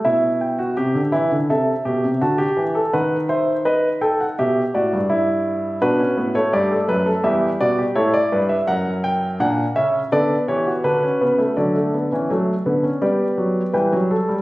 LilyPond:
<<
  \new Staff \with { instrumentName = "Grand piano" } { \time 4/4 \key e \minor \tempo 4 = 83 << { e''8 g''4. e''4 a''4 | fis''8 e''8 dis''8 g''16 fis''16 e''8 d''4. | b'8. cis''16 d''8 b'8 e''8 d''8 cis''16 d''8 e''16 | fis''8 g''8 fis''8 e''8 d''8 cis''8 b'4 |
d''2 d''4 g''4 | } \\ { e'8. fis'16 g'8 e'8 a'8 g'8 fis'16 g'8 a'16 | b'8 c''8 b'8 a'8 g'8 fis'8 e'4 | fis'4 g'16 a'16 r16 a'16 g'8 fis'16 g'16 a'8 b'8 | ais'2 a'8 g'16 fis'4~ fis'16 |
a'2 g'4 b'8 a'8 | } >> }
  \new Staff \with { instrumentName = "Grand piano" } { \clef bass \time 4/4 \key e \minor << { r1 | r1 | d'16 cis'16 b16 a4~ a16 g4 e'4~ | e'4 d'8 cis'8 b4 d'16 cis'16 b16 a16 |
fis16 a16 b16 cis'16 a8 b16 cis'16 b4 g4 | } \\ { b,4 c16 d16 e16 d16 c8 b,16 c16 d8 e8 | dis2 b,8 a,16 g,4~ g,16 | b,8 a,8 g,8 fis,8 e,8 b,8 a,8 g,8 | fis,4 ais,8 cis8 d8 e8 d8 cis8 |
d8. e16 fis8 d8 g8 fis8 e16 fis8 g16 | } >> }
>>